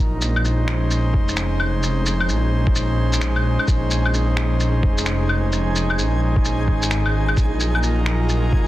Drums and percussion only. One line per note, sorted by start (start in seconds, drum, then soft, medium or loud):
0.21 shaker medium
0.36 claves soft
0.45 shaker medium
0.68 finger snap loud
0.91 shaker medium
1.14 kick loud
1.28 shaker medium
1.37 finger snap loud
1.37 shaker medium
1.60 claves medium
1.83 shaker medium
2.06 shaker medium
2.21 claves medium
2.29 shaker medium
2.67 kick loud
2.75 shaker medium
3.13 shaker medium
3.21 finger snap loud
3.21 shaker medium
3.36 claves medium
3.59 claves soft
3.68 kick loud
3.68 shaker medium
3.91 shaker medium
4.05 claves soft
4.14 shaker medium
4.37 finger snap loud
4.60 shaker medium
4.83 kick loud
4.98 shaker medium
5.06 finger snap loud
5.06 shaker medium
5.29 claves soft
5.52 shaker medium
5.76 shaker medium
5.90 claves soft
5.99 shaker medium
6.36 kick loud
6.45 shaker soft
6.68 kick medium
6.82 shaker medium
6.91 finger snap loud
6.91 shaker medium
7.06 claves soft
7.29 claves soft
7.37 kick loud
7.37 shaker soft
7.60 shaker soft
7.75 claves soft
7.83 shaker soft
8.06 finger snap loud
8.29 shaker medium
8.52 kick loud